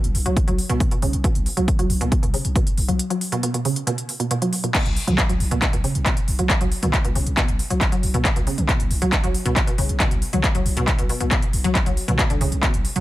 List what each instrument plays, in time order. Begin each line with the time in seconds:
0.04 808-style bass B1, closed hi-hat
0.15 808-style bass B1, open hi-hat
0.26 808-style bass B1, synth arpeggio sound F#3, closed hi-hat
0.37 kick, closed hi-hat
0.48 808-style bass B1, synth arpeggio sound F#3, closed hi-hat
0.59 open hi-hat
0.69 808-style bass B1, synth arpeggio sound B2, closed hi-hat
0.80 synth arpeggio sound B2, kick, closed hi-hat
0.91 synth arpeggio sound B2, closed hi-hat
1.02 808-style bass B1, synth arpeggio sound C#3, open hi-hat
1.13 808-style bass B1, closed hi-hat
1.24 synth arpeggio sound B2, kick, closed hi-hat
1.35 808-style bass B1, closed hi-hat
1.46 open hi-hat
1.57 808-style bass B1, synth arpeggio sound F#3, closed hi-hat
1.68 kick, closed hi-hat
1.79 808-style bass B1, synth arpeggio sound F#3, closed hi-hat
1.90 808-style bass B1, open hi-hat
2.01 808-style bass B1, synth arpeggio sound B2, closed hi-hat
2.12 synth arpeggio sound B2, kick, closed hi-hat
2.23 808-style bass B1, synth arpeggio sound B2, closed hi-hat
2.34 synth arpeggio sound C#3, open hi-hat
2.45 808-style bass B1, closed hi-hat
2.56 synth arpeggio sound B2, kick, closed hi-hat
2.67 closed hi-hat
2.77 808-style bass B1, open hi-hat
2.88 808-style bass B1, synth arpeggio sound F#3, closed hi-hat
2.99 closed hi-hat
3.10 synth arpeggio sound F#3, closed hi-hat
3.21 open hi-hat
3.32 synth arpeggio sound B2, closed hi-hat
3.43 synth arpeggio sound B2, closed hi-hat
3.54 synth arpeggio sound B2, closed hi-hat
3.65 synth arpeggio sound C#3, open hi-hat
3.76 closed hi-hat
3.87 synth arpeggio sound B2, closed hi-hat
3.98 closed hi-hat
4.09 open hi-hat
4.20 synth arpeggio sound B2, closed hi-hat
4.31 synth arpeggio sound B2, closed hi-hat
4.42 synth arpeggio sound F#3, closed hi-hat
4.53 open hi-hat
4.64 synth arpeggio sound B2, closed hi-hat
4.75 synth arpeggio sound B2, kick, clap, closed hi-hat, crash
4.86 808-style bass B1, closed hi-hat
4.96 open hi-hat
5.07 808-style bass B1, synth arpeggio sound F#3, closed hi-hat, mid tom
5.18 kick, clap, closed hi-hat
5.29 808-style bass B1, synth arpeggio sound F#3, closed hi-hat
5.40 808-style bass B1, open hi-hat
5.51 808-style bass B1, synth arpeggio sound B2, closed hi-hat
5.62 synth arpeggio sound B2, kick, clap, closed hi-hat
5.73 808-style bass B1, synth arpeggio sound B2, closed hi-hat
5.84 synth arpeggio sound C#3, open hi-hat
5.95 808-style bass B1, closed hi-hat
6.06 synth arpeggio sound B2, kick, clap, closed hi-hat
6.17 closed hi-hat
6.28 808-style bass B1, open hi-hat
6.39 808-style bass B1, synth arpeggio sound F#3, closed hi-hat
6.50 kick, clap, closed hi-hat
6.61 808-style bass B1, synth arpeggio sound F#3, closed hi-hat
6.72 open hi-hat
6.83 808-style bass B1, synth arpeggio sound B2, closed hi-hat, mid tom
6.93 synth arpeggio sound B2, kick, clap, closed hi-hat
7.05 808-style bass B1, synth arpeggio sound B2, closed hi-hat
7.15 808-style bass B1, synth arpeggio sound C#3, open hi-hat
7.27 808-style bass B1, closed hi-hat
7.37 synth arpeggio sound B2, kick, clap, closed hi-hat
7.48 808-style bass B1, closed hi-hat
7.59 open hi-hat
7.70 808-style bass B1, synth arpeggio sound F#3, closed hi-hat
7.81 kick, clap, closed hi-hat
7.92 synth arpeggio sound F#3, closed hi-hat
8.03 808-style bass B1, open hi-hat
8.14 808-style bass B1, synth arpeggio sound B2, closed hi-hat
8.25 synth arpeggio sound B2, kick, clap, closed hi-hat
8.36 808-style bass B1, synth arpeggio sound B2, closed hi-hat
8.47 synth arpeggio sound C#3, open hi-hat
8.58 808-style bass B1, closed hi-hat, mid tom
8.69 synth arpeggio sound B2, kick, clap, closed hi-hat
8.80 808-style bass B1, closed hi-hat
8.91 808-style bass B1, open hi-hat
9.02 808-style bass B1, synth arpeggio sound F#3, closed hi-hat
9.12 kick, clap, closed hi-hat
9.24 808-style bass B1, synth arpeggio sound F#3, closed hi-hat
9.35 open hi-hat
9.45 808-style bass B1, synth arpeggio sound B2, closed hi-hat
9.56 synth arpeggio sound B2, kick, clap, closed hi-hat
9.67 synth arpeggio sound B2, closed hi-hat
9.78 808-style bass B1, synth arpeggio sound C#3, open hi-hat
9.89 808-style bass B1, closed hi-hat
10.00 synth arpeggio sound B2, kick, clap, closed hi-hat
10.11 808-style bass B1, closed hi-hat
10.22 open hi-hat
10.33 808-style bass B1, synth arpeggio sound F#3, closed hi-hat, mid tom
10.44 kick, clap, closed hi-hat
10.55 808-style bass B1, synth arpeggio sound F#3, closed hi-hat
10.66 808-style bass B1, open hi-hat
10.77 808-style bass B1, synth arpeggio sound B2, closed hi-hat
10.88 synth arpeggio sound B2, kick, clap, closed hi-hat
10.99 808-style bass B1, synth arpeggio sound B2, closed hi-hat
11.09 synth arpeggio sound B2, open hi-hat
11.20 808-style bass B1, synth arpeggio sound B2, closed hi-hat
11.31 synth arpeggio sound B2, kick, clap, closed hi-hat
11.42 closed hi-hat
11.53 808-style bass B1, open hi-hat
11.64 808-style bass B1, synth arpeggio sound F#3, closed hi-hat
11.75 kick, clap, closed hi-hat
11.86 808-style bass B1, synth arpeggio sound F#3, closed hi-hat
11.97 open hi-hat
12.08 808-style bass B1, synth arpeggio sound B2, closed hi-hat, mid tom
12.19 synth arpeggio sound B2, kick, clap, closed hi-hat
12.30 808-style bass B1, synth arpeggio sound D3, closed hi-hat
12.41 808-style bass B1, synth arpeggio sound C#3, open hi-hat
12.52 808-style bass B1, closed hi-hat
12.63 synth arpeggio sound B2, kick, clap, closed hi-hat
12.74 808-style bass B1, closed hi-hat
12.85 open hi-hat
12.96 808-style bass B1, synth arpeggio sound F#3, closed hi-hat